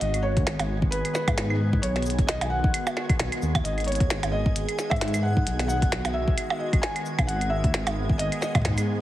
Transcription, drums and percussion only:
0.01 closed hi-hat
0.14 closed hi-hat, claves
0.37 kick, closed hi-hat
0.47 snare, closed hi-hat
0.59 closed hi-hat, percussion blips
0.82 kick
0.92 closed hi-hat
1.05 closed hi-hat, claves
1.15 snare, shaker
1.28 kick, closed hi-hat, percussion blips, claves
1.38 snare, closed hi-hat
1.50 claves
1.73 kick
1.83 closed hi-hat
1.96 snare, closed hi-hat
2.02 closed hi-hat, shaker
2.10 closed hi-hat
2.19 kick, closed hi-hat
2.29 snare, closed hi-hat
2.41 closed hi-hat, percussion blips
2.64 kick
2.74 closed hi-hat, claves
2.87 closed hi-hat, percussion blips
2.97 snare, claves
3.10 kick, closed hi-hat, claves
3.19 snare, closed hi-hat
3.32 closed hi-hat, claves
3.42 shaker
3.55 kick, closed hi-hat, percussion blips, claves
3.65 closed hi-hat
3.78 closed hi-hat, claves
3.80 closed hi-hat
3.84 closed hi-hat
3.88 closed hi-hat
3.92 closed hi-hat
3.95 closed hi-hat
4.00 kick, closed hi-hat
4.10 snare, closed hi-hat
4.23 closed hi-hat, percussion blips
4.46 kick
4.56 closed hi-hat
4.69 closed hi-hat, claves
4.79 snare, shaker
4.91 kick, closed hi-hat, percussion blips, claves
4.96 closed hi-hat
5.01 snare, closed hi-hat
5.08 closed hi-hat
5.14 closed hi-hat, claves, shaker
5.37 kick
5.47 closed hi-hat
5.59 snare, closed hi-hat
5.69 shaker
5.82 kick, closed hi-hat
5.92 snare, closed hi-hat
6.05 closed hi-hat, percussion blips
6.28 kick
6.38 closed hi-hat, claves
6.50 percussion blips
6.73 kick, closed hi-hat, claves
6.83 snare, closed hi-hat
6.96 closed hi-hat, claves
7.06 shaker
7.19 kick, closed hi-hat, percussion blips, claves
7.29 closed hi-hat
7.41 closed hi-hat, claves
7.64 kick, closed hi-hat
7.74 snare, closed hi-hat
7.87 closed hi-hat, percussion blips
8.10 kick
8.19 closed hi-hat
8.32 closed hi-hat, claves
8.42 snare, shaker
8.55 kick, closed hi-hat, percussion blips, claves
8.57 kick
8.62 kick, snare, closed hi-hat
8.65 kick
8.69 kick
8.73 kick
8.78 closed hi-hat, claves, shaker

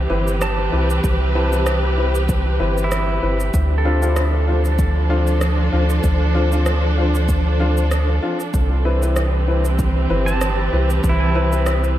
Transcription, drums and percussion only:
0.28 shaker
0.41 cross-stick, shaker
0.90 shaker
1.04 kick, shaker
1.53 shaker
1.66 cross-stick, shaker
2.15 shaker
2.29 kick, shaker
2.78 shaker
2.92 cross-stick, shaker
3.40 shaker
3.54 kick, shaker
4.02 shaker
4.16 cross-stick, shaker
4.65 shaker
4.79 kick, shaker
5.27 shaker
5.41 cross-stick, shaker
5.90 shaker
6.04 kick, shaker
6.52 shaker
6.66 cross-stick, shaker
7.15 shaker
7.29 kick, shaker
7.77 shaker
7.91 cross-stick, shaker
8.40 shaker
8.54 kick, shaker
9.03 shaker
9.16 cross-stick, shaker
9.65 shaker
9.79 kick, shaker
10.28 shaker
10.41 cross-stick, shaker
10.90 shaker
11.04 kick, shaker
11.52 shaker
11.66 cross-stick, shaker
11.84 shaker

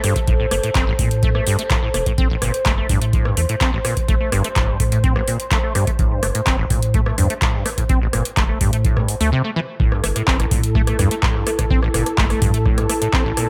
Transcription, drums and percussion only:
0.04 cross-stick, open hi-hat
0.16 kick, closed hi-hat
0.28 kick, closed hi-hat
0.51 cross-stick, open hi-hat
0.63 closed hi-hat
0.75 kick, clap, closed hi-hat
0.99 kick, open hi-hat
1.11 closed hi-hat
1.23 kick, closed hi-hat
1.35 cross-stick
1.47 open hi-hat
1.59 closed hi-hat
1.70 kick, clap, closed hi-hat
1.94 cross-stick, open hi-hat
2.06 kick, closed hi-hat
2.18 kick, closed hi-hat
2.42 cross-stick, open hi-hat
2.54 closed hi-hat
2.66 kick, clap, closed hi-hat
2.89 kick, open hi-hat
3.02 closed hi-hat
3.13 kick, closed hi-hat
3.25 cross-stick
3.37 open hi-hat
3.49 closed hi-hat
3.61 kick, clap, closed hi-hat
3.85 cross-stick, open hi-hat
3.97 kick, closed hi-hat
4.09 kick, closed hi-hat
4.32 cross-stick, open hi-hat
4.44 closed hi-hat
4.56 kick, clap, closed hi-hat
4.80 kick, open hi-hat
4.92 closed hi-hat
5.04 kick, closed hi-hat
5.16 cross-stick
5.28 open hi-hat
5.40 closed hi-hat
5.51 kick, clap, closed hi-hat
5.75 cross-stick, open hi-hat
5.87 kick, closed hi-hat
5.99 kick, closed hi-hat
6.23 cross-stick, open hi-hat
6.35 closed hi-hat
6.47 kick, clap, closed hi-hat
6.70 kick, open hi-hat
6.83 closed hi-hat
6.94 kick, closed hi-hat
7.06 cross-stick
7.18 open hi-hat
7.30 closed hi-hat
7.42 kick, clap, closed hi-hat
7.66 cross-stick, open hi-hat
7.78 kick, closed hi-hat
7.89 kick, closed hi-hat
8.13 cross-stick, open hi-hat
8.25 closed hi-hat
8.37 kick, clap, closed hi-hat
8.61 kick, open hi-hat
8.73 closed hi-hat
8.85 kick, closed hi-hat
8.97 cross-stick
9.08 open hi-hat
9.21 open hi-hat
9.80 kick
9.92 cross-stick
10.04 cross-stick, open hi-hat
10.16 cross-stick, closed hi-hat
10.28 kick, clap
10.40 cross-stick, closed hi-hat
10.51 kick, open hi-hat
10.63 closed hi-hat
10.75 kick, cross-stick
10.87 cross-stick, closed hi-hat
10.99 cross-stick, open hi-hat
11.11 closed hi-hat
11.23 kick, cross-stick, clap
11.47 cross-stick, open hi-hat
11.59 kick, cross-stick, closed hi-hat
11.70 kick
11.83 cross-stick
11.94 cross-stick, open hi-hat
12.06 cross-stick, closed hi-hat
12.18 kick, clap
12.30 cross-stick, open hi-hat
12.42 kick, open hi-hat
12.54 closed hi-hat
12.66 kick, cross-stick
12.78 cross-stick, closed hi-hat
12.90 cross-stick, open hi-hat
13.02 closed hi-hat
13.13 kick, cross-stick, clap
13.37 cross-stick, open hi-hat

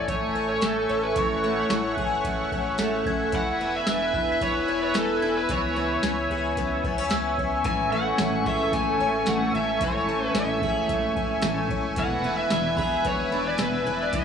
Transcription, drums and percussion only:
0.08 kick, closed hi-hat
0.61 snare, closed hi-hat, tambourine
1.16 kick, closed hi-hat
1.70 snare, closed hi-hat, tambourine
1.97 kick
2.24 kick, closed hi-hat
2.52 kick
2.78 snare, closed hi-hat, tambourine
3.06 kick
3.32 kick, closed hi-hat
3.87 snare, closed hi-hat, tambourine
4.14 kick
4.41 kick, closed hi-hat
4.94 snare, closed hi-hat, tambourine
5.49 kick, closed hi-hat
6.03 snare, closed hi-hat, tambourine
6.57 kick, closed hi-hat
6.84 kick
7.10 snare, closed hi-hat, tambourine
7.38 kick
7.64 kick, closed hi-hat
8.18 snare, closed hi-hat, tambourine
8.46 kick
8.73 kick, closed hi-hat
9.26 snare, closed hi-hat, tambourine
9.81 kick, closed hi-hat
10.35 snare, closed hi-hat, tambourine
10.62 kick
10.89 kick, closed hi-hat
11.16 kick
11.42 snare, closed hi-hat, tambourine
11.70 kick
11.96 kick, closed hi-hat
12.50 snare, closed hi-hat, tambourine
12.77 kick
13.05 kick, closed hi-hat
13.58 snare, closed hi-hat, tambourine
14.13 kick, closed hi-hat

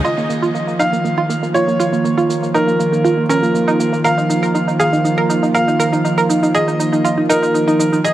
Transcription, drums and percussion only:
0.05 cabasa
0.18 cabasa
0.30 cabasa
0.43 cabasa
0.55 cabasa
0.68 cabasa
0.80 cabasa
0.93 cabasa
1.05 cabasa
1.30 cabasa
1.43 cabasa
1.55 cabasa
1.68 cabasa
1.80 cabasa
1.93 cabasa
2.05 cabasa
2.18 cabasa
2.30 cabasa
2.43 cabasa
2.55 cabasa
2.68 cabasa
2.80 cabasa
2.93 cabasa
3.05 cabasa
3.30 cabasa
3.43 cabasa
3.55 cabasa
3.68 cabasa
3.80 cabasa
3.93 cabasa
4.05 cabasa
4.18 cabasa
4.30 cabasa
4.43 cabasa
4.55 cabasa
4.68 cabasa
4.80 cabasa
4.93 cabasa
5.05 cabasa
5.30 cabasa
5.43 cabasa
5.55 cabasa
5.68 cabasa
5.80 cabasa
5.93 cabasa
6.05 cabasa
6.18 cabasa
6.30 cabasa
6.43 cabasa
6.55 cabasa
6.68 cabasa
6.80 cabasa
6.93 cabasa
7.05 cabasa
7.30 cabasa
7.43 cabasa
7.55 cabasa
7.68 cabasa
7.80 cabasa
7.93 cabasa
8.05 cabasa

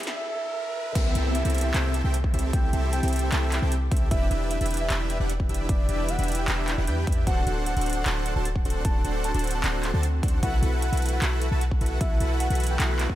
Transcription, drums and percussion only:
0.00 closed hi-hat
0.03 snare, closed hi-hat
0.95 kick, closed hi-hat, crash
1.15 closed hi-hat
1.35 closed hi-hat
1.45 closed hi-hat
1.50 closed hi-hat
1.55 closed hi-hat
1.58 closed hi-hat
1.61 closed hi-hat
1.74 clap, closed hi-hat
1.94 closed hi-hat
2.14 closed hi-hat
2.24 kick
2.34 closed hi-hat
2.39 closed hi-hat
2.53 kick, closed hi-hat
2.73 closed hi-hat
2.93 closed hi-hat
3.03 closed hi-hat
3.08 closed hi-hat
3.13 closed hi-hat
3.16 closed hi-hat
3.19 closed hi-hat
3.32 clap, closed hi-hat
3.52 clap, closed hi-hat
3.72 closed hi-hat
3.92 kick, closed hi-hat
3.97 closed hi-hat
4.11 kick, closed hi-hat
4.31 closed hi-hat
4.51 closed hi-hat
4.61 closed hi-hat
4.66 closed hi-hat
4.71 closed hi-hat
4.74 closed hi-hat
4.77 closed hi-hat
4.90 clap, closed hi-hat
5.10 closed hi-hat
5.30 closed hi-hat
5.40 kick
5.49 closed hi-hat
5.54 closed hi-hat
5.69 kick, closed hi-hat
5.89 closed hi-hat
6.09 closed hi-hat
6.19 closed hi-hat
6.24 closed hi-hat
6.28 closed hi-hat
6.32 closed hi-hat
6.35 closed hi-hat
6.48 clap, closed hi-hat
6.68 clap, closed hi-hat
6.87 closed hi-hat
7.07 kick, closed hi-hat
7.12 closed hi-hat
7.27 kick, closed hi-hat
7.47 closed hi-hat
7.66 closed hi-hat
7.77 closed hi-hat
7.81 closed hi-hat
7.86 closed hi-hat
7.90 closed hi-hat
7.93 closed hi-hat
8.06 clap, closed hi-hat
8.26 closed hi-hat
8.45 closed hi-hat
8.56 kick
8.65 closed hi-hat
8.70 closed hi-hat
8.85 kick, closed hi-hat
9.05 closed hi-hat
9.24 closed hi-hat
9.34 closed hi-hat
9.39 closed hi-hat
9.44 closed hi-hat
9.47 closed hi-hat
9.51 closed hi-hat
9.64 clap, closed hi-hat
9.83 clap, closed hi-hat
10.03 closed hi-hat
10.23 kick, closed hi-hat
10.28 closed hi-hat
10.43 kick, closed hi-hat
10.63 closed hi-hat
10.82 closed hi-hat
10.93 closed hi-hat
10.97 closed hi-hat
11.02 closed hi-hat
11.06 closed hi-hat
11.09 closed hi-hat
11.22 clap, closed hi-hat
11.42 closed hi-hat
11.61 closed hi-hat
11.71 kick
11.81 closed hi-hat
11.86 closed hi-hat
12.01 kick, closed hi-hat
12.20 closed hi-hat
12.40 closed hi-hat
12.50 closed hi-hat
12.55 closed hi-hat
12.60 closed hi-hat
12.64 closed hi-hat
12.67 closed hi-hat
12.80 clap, closed hi-hat
12.99 clap, closed hi-hat
13.10 kick

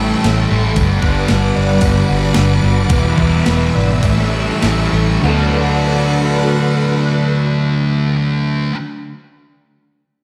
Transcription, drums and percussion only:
0.24 snare, open hi-hat
0.76 kick, open hi-hat
1.03 kick, snare
1.28 snare, open hi-hat
1.81 kick, open hi-hat
2.34 snare, open hi-hat
2.90 kick, open hi-hat
3.18 kick
3.46 snare, open hi-hat
4.03 kick, open hi-hat
4.17 snare
4.62 snare, open hi-hat

